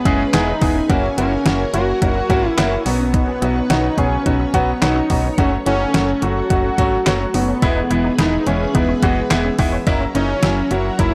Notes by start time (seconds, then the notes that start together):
Already playing: G#4 B4 G#5 B5
0.05 F#1 G#3 B3 C#4 E4 G#4, kick, closed hi-hat
0.33 E1 G#3 B3 D#4 E4 G#4, snare, clap, closed hi-hat
0.47 C#4
0.61 E1 G#3 B3 D#4 E4 G#4, kick, open hi-hat
0.75 C#4
0.89 F#1 A#3 C#4 D#4 E4 F#4 A#4 F#5 C#6, kick, closed hi-hat
1.03 C#4
1.17 F#1 A#3 C#4 E4 F#4, closed hi-hat
1.31 D#4
1.46 F#1 A#3 C#4 E4 F#4, snare, closed hi-hat
1.74 F#1 A#3 C#4 E4 F#4, closed hi-hat
2.02 F#1 A#3 C#4 D#4 E4 F#4, kick, closed hi-hat
2.15 C#4
2.30 G#1 A#3 C#4 E4 F#4, kick, closed hi-hat
2.49 E4
2.58 F#1 A#3 B3 C#4 E4 F#4, snare, clap, closed hi-hat
2.72 C#4
2.86 B1 F#3 B3 C#4 D#4 F#4 B4 C#5, open hi-hat
3.00 C#4
3.14 D#4, kick, closed hi-hat
3.28 C#4
3.42 B1 F#3 B3 C#4 E4 F#4, closed hi-hat
3.56 D#4
3.70 B1 F#3 B3 C#4 D#4 E4 F#4, snare, closed hi-hat
3.98 B1 F#3 B3 C#4 G#4, kick, closed hi-hat
4.26 B1 F#3 B3 C#4 D#4 F#4, kick, closed hi-hat
4.40 C#4
4.54 B1 F#3 B3 C#4 F#4, kick, closed hi-hat
4.82 B1 F#3 B3 C#4 D#4 F#4, snare, clap, closed hi-hat
4.96 C#4
5.10 B1 F#3 B3 C#4 D#4 F#4, kick, open hi-hat
5.24 C#4
5.38 F#1 F#3 A3 C#4 D#4 F#4 A4 F#5, kick, closed hi-hat
5.52 C#4
5.66 F#1 F#3 A3 C#4 E4 F#4, closed hi-hat
5.80 D#4
5.94 F#1 F#3 A3 C#4 E4 F#4, snare, closed hi-hat
6.22 F#1 F#3 A3 C#4 F#4, closed hi-hat
6.50 F#1 F#3 A3 C#4 D#4 F#4, kick, closed hi-hat
6.64 C#4
6.78 G#1 F#3 A3 C#4 F#4, kick, closed hi-hat
7.06 F#1 F#3 A3 B3 C#4 F#4, snare, clap, closed hi-hat
7.20 C#4
7.34 F#1 F#3 A3 B3 C#4 D#4 F#4, open hi-hat
7.48 C#4
7.62 E1 E3 G#3 B3 E4 G#4 B4 E5 B5, kick, closed hi-hat
7.76 D#4
7.90 E1 E3 G#3 B3 E4, closed hi-hat
8.04 D#4
8.18 E1 E3 G#3 B3 D#4 E4, snare, closed hi-hat
8.46 E1 E3 G#3 B3 C#4 E4, closed hi-hat
8.75 E1 E3 G#3 B3 D#4 E4, kick, closed hi-hat
8.89 C#4
9.03 F#1 E3 G#3 B3 C#4 F#4, kick, closed hi-hat
9.30 E1 E3 G#3 B3 E4, snare, clap, closed hi-hat
9.45 C#4
9.59 E1 E3 G#3 B3 D#4 E4, kick, open hi-hat
9.73 C#4
9.87 F#1 F#3 A#3 C#4 D#4 E4 F#4 C#5 A#5, kick, closed hi-hat
10.01 C#4
10.15 F#1 F#3 A#3 C#4 D#4 E4, closed hi-hat
10.29 D#4
10.43 F#1 F#3 A#3 C#4 E4, snare, closed hi-hat
10.71 F#1 F#3 A#3 C#4 E4 F#4, closed hi-hat
10.99 F#1 F#3 A#3 C#4 D#4 E4, kick, closed hi-hat